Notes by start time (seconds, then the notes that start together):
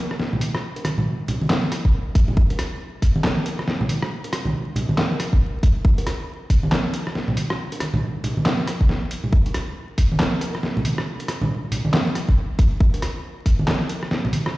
0.11 cross-stick
0.20 snare
0.33 low conga
0.40 closed hi-hat, high conga
0.55 cross-stick
0.76 closed hi-hat, high bongo
0.85 cross-stick, closed hi-hat, high conga
0.98 high conga, low conga
1.28 closed hi-hat, low conga
1.41 high conga
1.50 snare, clap
1.64 high bongo
1.72 cross-stick, closed hi-hat
1.85 kick
2.15 kick, closed hi-hat
2.28 low conga
2.37 kick
2.50 closed hi-hat, high bongo
2.59 cross-stick, closed hi-hat
3.02 kick, closed hi-hat
3.16 high conga
3.24 snare, clap
3.46 closed hi-hat, high bongo
3.59 cross-stick
3.68 snare
3.81 low conga
3.89 closed hi-hat, high conga
4.02 cross-stick
4.24 closed hi-hat, high bongo
4.33 cross-stick, closed hi-hat
4.45 high conga, low conga
4.76 closed hi-hat, low conga
4.89 high conga
4.98 snare, clap
5.11 high bongo
5.20 cross-stick, closed hi-hat
5.33 kick
5.63 kick, closed hi-hat
5.85 kick
5.98 closed hi-hat, high bongo
6.07 cross-stick, closed hi-hat
6.50 kick, closed hi-hat
6.63 high conga
6.72 snare, clap
6.94 closed hi-hat, high bongo
7.07 cross-stick
7.15 snare
7.28 low conga
7.37 closed hi-hat, high conga
7.50 cross-stick
7.72 closed hi-hat, high bongo
7.80 cross-stick, closed hi-hat, high conga
7.94 high conga, low conga
8.24 closed hi-hat, low conga
8.37 high conga
8.46 snare, clap
8.60 high bongo
8.67 cross-stick, closed hi-hat
8.81 kick
8.89 snare
9.11 closed hi-hat
9.24 low conga
9.33 kick
9.46 closed hi-hat, high bongo
9.54 cross-stick, closed hi-hat
9.98 kick, closed hi-hat
10.12 high conga
10.20 snare, clap
10.41 closed hi-hat, high bongo
10.55 cross-stick
10.63 snare
10.77 low conga
10.85 closed hi-hat, high conga
10.98 cross-stick
11.19 closed hi-hat, high bongo
11.28 cross-stick, closed hi-hat
11.42 high conga, low conga
11.72 closed hi-hat, low conga
11.85 high conga
11.94 snare, clap
12.07 high bongo
12.15 cross-stick, closed hi-hat
12.29 kick
12.59 kick, closed hi-hat
12.80 kick
12.94 closed hi-hat, high bongo
13.02 cross-stick, closed hi-hat
13.46 kick, closed hi-hat
13.59 high conga
13.68 snare, clap
13.89 closed hi-hat, high bongo
14.03 cross-stick
14.11 snare
14.25 low conga
14.33 closed hi-hat, high conga
14.46 cross-stick